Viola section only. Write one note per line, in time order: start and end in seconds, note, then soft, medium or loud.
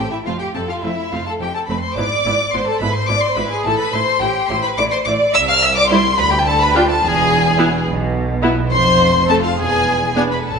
0.27 0.35 A3 medium
0.27 0.35 C4 soft
0.55 0.63 A3 soft
0.55 0.62 C4 medium
0.83 0.91 A3 medium
0.83 0.92 C4 soft
1.13 1.21 A3 medium
1.13 1.21 C4 medium
1.41 1.49 A3 soft
1.41 1.49 C4 soft
1.69 1.77 A3 medium
1.69 1.77 C4 medium
1.98 2.06 B3 medium
1.98 2.06 E4 medium
2.26 2.34 B3 medium
2.26 2.34 E4 medium
2.54 2.62 B3 soft
2.54 2.62 E4 medium
2.81 2.89 B3 medium
2.81 2.89 E4 medium
3.09 3.17 B3 soft
3.09 3.17 E4 medium
3.37 3.45 B3 medium
3.37 3.45 E4 medium
3.65 3.73 A3 medium
3.65 3.74 E4 medium
3.94 4.03 A3 medium
3.94 4.02 E4 medium
4.22 4.30 A3 medium
4.22 4.30 E4 medium
4.50 4.59 A3 medium
4.50 4.58 E4 medium
4.79 4.87 A3 medium
4.79 4.87 E4 medium
5.06 5.14 A3 medium
5.06 5.15 E4 medium
5.91 6.04 G3 medium
5.91 6.04 E4 medium
6.75 6.88 D4 medium
6.75 6.88 F4 medium
7.58 7.71 B3 medium
7.58 7.71 E4 medium
8.42 8.56 B3 medium
8.42 8.56 E4 medium
9.29 9.43 A3 medium
9.29 9.43 C4 medium
10.16 10.30 B3 medium
10.16 10.30 D4 medium